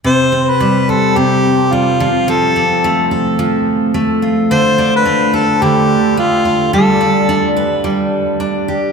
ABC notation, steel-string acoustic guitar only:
X:1
M:4/4
L:1/8
Q:"Swing 16ths" 1/4=108
K:Flyd
V:1 name="Steel-string acoustic guitar"
C, C G, c C,2 G, F, | F, C A, A F,2 A, F | D, D A, A D,2 A, F | G, D D B G,2 D G |]